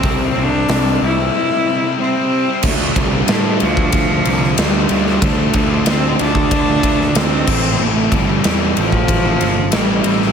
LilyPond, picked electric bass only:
\new Staff \with { instrumentName = "Picked electric bass" } { \clef bass \time 4/4 \key d \minor \tempo 4 = 93 c,8 c,8 c,8 c,8 r2 | d,8 c,8 a,8 d,8 d,8 c,8 d,8 d,8 | d,8 d,8 d,8 d,8 d,8 d,8 d,8 a,,8 | a,,8 g,,8 e,8 a,,8 a,,8 g,,8 a,,8 a,,8 | }